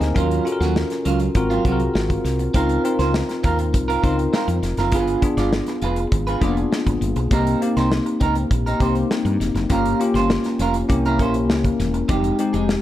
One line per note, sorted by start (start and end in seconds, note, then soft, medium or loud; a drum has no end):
0.00 0.12 D2 medium
0.00 0.18 A#3 medium
0.00 0.18 C4 medium
0.00 0.18 D#4 medium
0.00 0.29 G4 medium
0.00 0.18 G#4 medium
0.00 0.16 A#4 medium
0.00 0.18 C5 medium
0.00 0.29 D#5 medium
0.00 0.18 F5 medium
0.00 0.18 G#5 medium
0.00 0.18 A#5 medium
0.00 muted clean electric guitar stroke soft
0.00 snare soft
0.00 closed hi-hat soft
0.14 0.39 D#2 medium
0.14 0.43 F#3 medium
0.14 0.38 C#4 medium
0.14 0.44 C#4 medium
0.14 0.38 F4 medium
0.14 0.44 F4 medium
0.14 0.38 F#4 medium
0.14 0.38 A#4 medium
0.14 kick medium
0.14 closed hi-hat medium
0.31 closed hi-hat soft
0.45 1.35 C#4 medium
0.45 1.35 F4 medium
0.45 1.35 F#4 medium
0.45 0.52 A4 medium
0.45 muted clean electric guitar stroke soft
0.45 closed hi-hat medium
0.52 1.36 A#4 medium
0.60 0.83 D#2 medium
0.60 0.75 F#3 soft
0.60 0.76 C#4 soft
0.60 0.77 F#4 medium
0.60 snare soft
0.60 closed hi-hat soft
0.76 muted clean electric guitar stroke soft
0.76 snare medium
0.90 muted clean electric guitar stroke soft
0.90 snare soft
0.90 closed hi-hat soft
1.05 1.28 C#2 medium
1.05 1.26 F#3 medium
1.05 1.21 C#4 medium
1.05 1.19 F4 medium
1.05 closed hi-hat medium
1.20 muted clean electric guitar stroke soft
1.20 closed hi-hat soft
1.35 1.58 G#1 medium
1.35 1.59 C4 medium
1.35 1.59 F4 medium
1.35 1.60 F#4 medium
1.35 1.60 A#4 medium
1.35 muted clean electric guitar stroke soft
1.35 kick medium
1.35 closed hi-hat medium
1.50 1.64 F#3 medium
1.50 1.65 C4 medium
1.50 1.66 F4 medium
1.50 closed hi-hat soft
1.65 1.87 C2 medium
1.65 1.81 F#3 medium
1.65 2.32 C4 medium
1.65 1.80 C4 medium
1.65 2.32 F4 medium
1.65 2.33 F#4 medium
1.65 1.79 F#4 medium
1.65 1.72 G#4 medium
1.65 kick medium
1.65 closed hi-hat medium
1.72 2.36 A#4 medium
1.79 muted clean electric guitar stroke soft
1.79 closed hi-hat soft
1.94 2.17 G#1 medium
1.94 muted clean electric guitar stroke soft
1.94 snare loud
2.09 muted clean electric guitar stroke soft
2.09 kick medium
2.09 closed hi-hat soft
2.24 2.47 C2 medium
2.24 snare soft
2.24 closed hi-hat medium
2.39 muted clean electric guitar stroke soft
2.39 closed hi-hat soft
2.54 2.77 C#2 medium
2.54 2.82 C4 medium
2.54 2.77 C4 medium
2.54 2.77 D#4 medium
2.54 2.77 F4 medium
2.54 2.82 F4 medium
2.54 2.78 A#4 medium
2.54 2.83 A#4 medium
2.54 kick medium
2.54 closed hi-hat medium
2.69 closed hi-hat medium
2.84 3.74 C4 medium
2.84 3.75 D#4 medium
2.84 3.75 F4 medium
2.84 3.75 A#4 medium
2.84 muted clean electric guitar stroke soft
2.84 closed hi-hat medium
2.99 3.21 C#2 medium
2.99 3.13 C4 soft
2.99 3.14 F4 soft
2.99 3.15 C5 medium
2.99 snare soft
2.99 closed hi-hat soft
3.14 muted clean electric guitar stroke soft
3.14 snare loud
3.29 muted clean electric guitar stroke soft
3.29 snare soft
3.29 closed hi-hat soft
3.43 3.74 D#2 medium
3.43 3.64 C4 medium
3.43 3.59 F4 medium
3.43 3.58 A#4 medium
3.43 kick medium
3.43 closed hi-hat medium
3.59 muted clean electric guitar stroke soft
3.59 closed hi-hat medium
3.73 3.96 C2 medium
3.73 muted clean electric guitar stroke soft
3.73 kick medium
3.73 closed hi-hat medium
3.88 4.01 C4 medium
3.88 4.02 F4 medium
3.88 4.04 A#4 medium
3.88 closed hi-hat soft
4.03 4.26 C#2 medium
4.03 4.19 C4 medium
4.03 4.71 C4 medium
4.03 4.71 D#4 medium
4.03 4.18 F4 medium
4.03 4.71 F4 medium
4.03 4.71 A#4 medium
4.03 4.18 C5 medium
4.03 kick medium
4.03 closed hi-hat medium
4.18 muted clean electric guitar stroke soft
4.18 closed hi-hat soft
4.33 4.54 C4 medium
4.33 4.48 F4 medium
4.33 4.47 A#4 medium
4.33 snare loud
4.48 4.59 F2 medium
4.48 muted clean electric guitar stroke soft
4.48 closed hi-hat medium
4.62 4.74 F1 medium
4.62 muted clean electric guitar stroke soft
4.62 snare soft
4.62 closed hi-hat medium
4.77 4.92 F#1 medium
4.77 4.93 C4 soft
4.77 4.92 F4 medium
4.77 4.95 A#4 medium
4.77 snare soft
4.77 closed hi-hat soft
4.92 5.15 G1 medium
4.92 5.15 B3 medium
4.92 5.15 D4 medium
4.92 5.15 F4 medium
4.92 5.20 F4 medium
4.92 5.15 G#4 medium
4.92 5.21 G#4 medium
4.92 5.21 B4 medium
4.92 kick medium
4.92 closed hi-hat medium
5.08 closed hi-hat soft
5.22 6.12 B3 medium
5.22 6.12 D4 medium
5.22 6.13 F4 medium
5.22 6.13 G#4 medium
5.22 kick medium
5.22 closed hi-hat medium
5.37 5.60 G1 medium
5.37 5.51 F4 soft
5.37 5.52 G#4 medium
5.37 5.54 D5 medium
5.37 snare soft
5.37 closed hi-hat soft
5.53 snare loud
5.67 muted clean electric guitar stroke soft
5.67 snare soft
5.67 closed hi-hat soft
5.82 6.05 F1 medium
5.82 6.03 F4 medium
5.82 5.98 G#4 medium
5.82 5.97 B4 medium
5.82 closed hi-hat medium
5.96 muted clean electric guitar stroke soft
5.96 closed hi-hat soft
6.12 6.34 G#1 medium
6.12 muted clean electric guitar stroke soft
6.12 kick medium
6.12 closed hi-hat medium
6.27 6.41 F4 medium
6.27 6.42 G#4 medium
6.27 6.44 B4 medium
6.27 closed hi-hat soft
6.41 6.64 F1 medium
6.41 6.48 A#3 medium
6.41 7.09 D4 medium
6.41 7.09 F4 medium
6.41 6.59 F4 medium
6.41 7.09 G#4 medium
6.41 6.57 G#4 medium
6.41 6.57 D5 medium
6.41 kick medium
6.41 closed hi-hat medium
6.47 7.12 B3 medium
6.57 muted clean electric guitar stroke soft
6.57 closed hi-hat soft
6.72 muted clean electric guitar stroke soft
6.72 snare loud
6.87 6.98 G#1 medium
6.87 muted clean electric guitar stroke soft
6.87 kick medium
6.87 closed hi-hat medium
7.01 7.12 G1 medium
7.01 closed hi-hat medium
7.16 7.27 B1 medium
7.16 muted clean electric guitar stroke soft
7.16 closed hi-hat soft
7.31 7.54 C2 medium
7.31 7.54 A#3 medium
7.31 7.54 C4 medium
7.31 7.59 C4 medium
7.31 7.54 D#4 medium
7.31 7.60 D#4 medium
7.31 7.55 G4 medium
7.31 7.60 A#4 medium
7.31 kick medium
7.31 closed hi-hat medium
7.47 closed hi-hat medium
7.62 8.51 A#3 medium
7.62 8.52 C4 medium
7.62 8.52 D#4 medium
7.62 8.52 G4 medium
7.62 muted clean electric guitar stroke soft
7.62 closed hi-hat medium
7.77 7.99 C2 medium
7.77 7.90 C4 soft
7.77 7.91 D#4 medium
7.77 7.93 C5 medium
7.77 snare soft
7.77 closed hi-hat soft
7.92 muted clean electric guitar stroke soft
7.92 snare loud
8.06 muted clean electric guitar stroke soft
8.06 closed hi-hat soft
8.20 8.43 C#2 medium
8.20 8.42 C4 medium
8.20 8.36 D#4 medium
8.20 8.35 A#4 medium
8.20 kick medium
8.20 closed hi-hat medium
8.35 muted clean electric guitar stroke soft
8.35 closed hi-hat medium
8.51 8.73 A#1 medium
8.51 muted clean electric guitar stroke soft
8.51 kick medium
8.51 closed hi-hat medium
8.66 8.80 C4 soft
8.66 8.81 D#4 medium
8.66 8.82 A#4 medium
8.66 closed hi-hat soft
8.80 9.03 C2 medium
8.80 9.48 A#3 medium
8.80 9.48 C4 medium
8.80 9.02 C4 medium
8.80 9.48 D#4 medium
8.80 8.96 D#4 medium
8.80 9.48 G4 medium
8.80 8.96 C5 medium
8.80 kick medium
8.80 closed hi-hat medium
8.95 muted clean electric guitar stroke soft
8.95 closed hi-hat soft
9.11 muted clean electric guitar stroke soft
9.11 snare loud
9.25 9.36 G2 medium
9.25 muted clean electric guitar stroke soft
9.25 closed hi-hat soft
9.40 9.51 F1 medium
9.40 snare soft
9.40 closed hi-hat medium
9.54 9.66 F#1 medium
9.54 muted clean electric guitar stroke soft
9.54 snare soft
9.54 closed hi-hat soft
9.69 9.93 G1 medium
9.69 9.92 A#3 medium
9.69 9.93 C#4 medium
9.69 9.98 C#4 medium
9.69 9.93 F4 medium
9.69 9.98 F4 medium
9.69 9.93 G4 medium
9.69 9.99 A#4 medium
9.69 kick medium
9.69 closed hi-hat medium
9.85 closed hi-hat soft
9.99 10.88 A#3 medium
9.99 10.88 C#4 medium
9.99 10.90 F4 medium
9.99 10.88 G4 medium
9.99 muted clean electric guitar stroke soft
9.99 closed hi-hat medium
10.14 10.37 G1 medium
10.14 10.29 C#4 soft
10.14 10.30 F4 soft
10.14 10.31 C5 medium
10.14 snare soft
10.14 closed hi-hat soft
10.30 muted clean electric guitar stroke soft
10.30 snare medium
10.44 muted clean electric guitar stroke soft
10.44 snare soft
10.44 closed hi-hat soft
10.59 10.82 F1 medium
10.59 10.81 C#4 medium
10.59 10.76 F4 medium
10.59 10.75 A#4 medium
10.59 closed hi-hat medium
10.74 muted clean electric guitar stroke soft
10.74 closed hi-hat medium
10.89 11.19 C2 medium
10.89 11.13 A#3 medium
10.89 11.13 C#4 medium
10.89 11.13 E4 medium
10.89 11.13 G4 medium
10.89 muted clean electric guitar stroke soft
10.89 kick medium
10.89 closed hi-hat medium
11.05 11.19 C#4 medium
11.05 11.20 E4 medium
11.05 11.22 A#4 medium
11.05 closed hi-hat soft
11.19 11.49 A#1 medium
11.19 11.87 A#3 medium
11.19 11.87 C#4 medium
11.19 11.36 C#4 medium
11.19 11.87 E4 medium
11.19 11.35 E4 medium
11.19 11.87 A#4 medium
11.19 11.35 C5 medium
11.19 kick medium
11.19 closed hi-hat medium
11.34 muted clean electric guitar stroke soft
11.34 closed hi-hat soft
11.49 11.71 C#2 medium
11.49 muted clean electric guitar stroke soft
11.49 snare loud
11.65 muted clean electric guitar stroke soft
11.65 kick medium
11.65 closed hi-hat soft
11.79 12.02 E1 medium
11.79 snare soft
11.79 closed hi-hat medium
11.94 muted clean electric guitar stroke soft
11.94 closed hi-hat soft
12.08 12.31 F1 medium
12.08 12.36 G#3 medium
12.08 12.31 G#3 medium
12.08 12.31 C4 medium
12.08 12.36 D#4 medium
12.08 12.32 D#4 medium
12.08 12.32 G4 medium
12.08 12.37 G4 medium
12.08 kick medium
12.08 closed hi-hat medium
12.24 closed hi-hat soft
12.39 12.82 G#3 medium
12.39 12.82 C4 medium
12.39 12.82 D#4 medium
12.39 12.82 G4 medium
12.39 muted clean electric guitar stroke soft
12.39 closed hi-hat medium
12.53 12.76 F1 medium
12.53 12.67 G#3 soft
12.53 12.68 D#4 soft
12.53 12.69 G#4 medium
12.53 closed hi-hat soft
12.69 snare medium